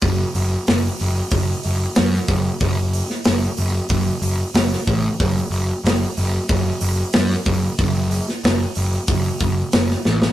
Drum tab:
HH |o-o-o-o-o-o-o-o-|o-o-o-o-o-o-o-o-|o-o-o-o-o-o-o-o-|o-o-o-o-o-o-o---|
SD |----o-------oo--|---oo-------oo--|----o-------oo--|---oo-------oooo|
BD |o-------o-----o-|o-------o-----o-|o-------o-----o-|o-------o-o-----|